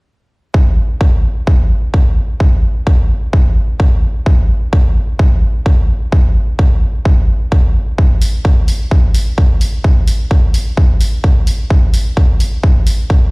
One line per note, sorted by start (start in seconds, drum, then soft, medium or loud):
0.54 kick loud
1.01 kick loud
1.47 kick loud
1.94 kick loud
2.40 kick loud
2.87 kick loud
3.33 kick loud
3.80 kick loud
4.26 kick loud
4.73 kick loud
5.19 kick loud
5.66 kick loud
6.12 kick loud
6.59 kick loud
7.05 kick loud
7.52 kick loud
7.98 kick loud
8.22 open hi-hat medium
8.45 kick loud
8.68 open hi-hat medium
8.91 kick loud
9.15 open hi-hat medium
9.38 kick loud
9.61 open hi-hat medium
9.84 kick loud
10.08 open hi-hat medium
10.31 kick loud
10.54 open hi-hat medium
10.77 kick loud
11.01 open hi-hat medium
11.24 kick loud
11.47 open hi-hat medium
11.70 kick loud
11.94 open hi-hat medium
12.17 kick loud
12.40 open hi-hat medium
12.63 kick loud
12.87 open hi-hat medium
13.10 kick loud